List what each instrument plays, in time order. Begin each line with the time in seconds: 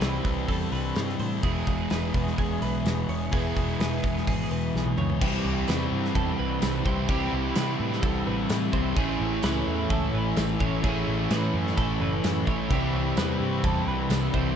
Already playing: overdriven electric guitar C3 E3 G3 C4 E4, analog synth pad G5 B5 E6
0.00 picked electric bass C2, clean electric guitar B4, snare, open hi-hat
0.25 picked electric bass C2, kick, open hi-hat
0.48 picked electric bass E2, clean electric guitar A4, kick, open hi-hat
0.72 picked electric bass C2, clean electric guitar B4, open hi-hat
0.96 picked electric bass G2, snare, open hi-hat
1.09 snare
1.20 picked electric bass A2, clean electric guitar C5, open hi-hat
1.42 picked electric bass E1, distorted electric guitar E2 B2, overdriven electric guitar E3 G#3 B3 E4, clean electric guitar G#4, analog synth pad B4 E5 G#5 D#6, kick, open hi-hat
1.67 picked electric bass E1, kick, open hi-hat
1.90 picked electric bass E1, clean electric guitar B4, snare, open hi-hat
2.14 picked electric bass E1, kick, open hi-hat
2.27 snare
2.38 picked electric bass E1, clean electric guitar G#4, kick, open hi-hat
2.62 picked electric bass B1, clean electric guitar B4, open hi-hat
2.85 picked electric bass E1, snare, open hi-hat
3.08 picked electric bass E1, clean electric guitar C#5, open hi-hat
3.32 picked electric bass E1, distorted electric guitar E2 B2, overdriven electric guitar E3 G#3 B3 E4, clean electric guitar G#4, kick, open hi-hat
3.56 picked electric bass E1, kick, open hi-hat
3.80 picked electric bass E1, clean electric guitar B4, snare, open hi-hat
4.03 picked electric bass E1, kick, open hi-hat
4.17 snare
4.27 picked electric bass G#1, clean electric guitar G#4, kick, open hi-hat
4.51 picked electric bass E1, clean electric guitar B4, open hi-hat
4.74 picked electric bass B1, snare
4.86 high tom
4.98 picked electric bass C#2, clean electric guitar C#5, mid tom
5.10 floor tom
5.20 picked electric bass C2, overdriven electric guitar C3 E3 G3 C4 E4, clean electric guitar G4, analog synth pad G5 B5 E6, kick, crash
5.45 picked electric bass C2
5.68 picked electric bass E2, clean electric guitar B4, snare, tambourine, crash
5.92 picked electric bass G2
6.05 snare
6.15 picked electric bass E2, clean electric guitar A4, kick, crash
6.39 picked electric bass C2, clean electric guitar B4
6.62 picked electric bass C2, snare, tambourine, crash
6.85 picked electric bass C2, overdriven electric guitar C3 E3 G3 C4 E4, clean electric guitar C5, kick
7.08 picked electric bass C2, overdriven electric guitar C3 E3 G3 C4 E4, clean electric guitar G4, kick, crash
7.33 picked electric bass C2
7.55 picked electric bass C3, clean electric guitar B4, snare, tambourine, crash
7.80 picked electric bass A2
7.93 snare
8.02 picked electric bass C2, clean electric guitar A4, kick, crash
8.27 picked electric bass A1, clean electric guitar B4
8.49 picked electric bass A2, snare, tambourine, crash
8.72 picked electric bass C2, overdriven electric guitar C3 E3 G3 C4 E4, clean electric guitar C5, kick
8.96 picked electric bass A1, overdriven electric guitar A2 E3 A3 C#4 E4, clean electric guitar G#4, analog synth pad C#5 E5 G#5, kick, crash
9.20 picked electric bass A1
9.43 picked electric bass C#2, clean electric guitar B4, snare, tambourine, crash
9.67 picked electric bass E2
9.90 picked electric bass C#2, clean electric guitar A4, kick, crash
10.14 picked electric bass A1, clean electric guitar B4
10.36 picked electric bass A1, snare, tambourine, crash
10.59 picked electric bass A1, overdriven electric guitar A2 E3 A3 C#4 E4, clean electric guitar C#5, kick
10.82 picked electric bass A1, overdriven electric guitar A2 E3 A3 C#4 E4, clean electric guitar G#4, analog synth pad B5, kick, crash
11.07 picked electric bass A1
11.30 picked electric bass A2, clean electric guitar B4, snare, tambourine, crash
11.54 picked electric bass F#2
11.67 snare
11.77 picked electric bass A1, clean electric guitar A4, kick, crash
12.00 picked electric bass F#1, clean electric guitar B4
12.24 picked electric bass F#2, snare, tambourine, crash
12.46 picked electric bass A1, overdriven electric guitar A2 E3 A3 C#4 E4, clean electric guitar C#5, kick
12.70 picked electric bass C2, overdriven electric guitar C3 E3 G3 C4 E4, analog synth pad C4 G5, clean electric guitar G4, kick, crash
12.94 picked electric bass C2
13.17 picked electric bass E2, clean electric guitar B4, snare, tambourine, crash
13.40 picked electric bass G2
13.64 picked electric bass E2, clean electric guitar A4, kick, crash
13.86 picked electric bass C2, clean electric guitar B4
14.10 picked electric bass C2, snare, tambourine, crash
14.33 picked electric bass C2, overdriven electric guitar C3 E3 G3 C4 E4, clean electric guitar C5, kick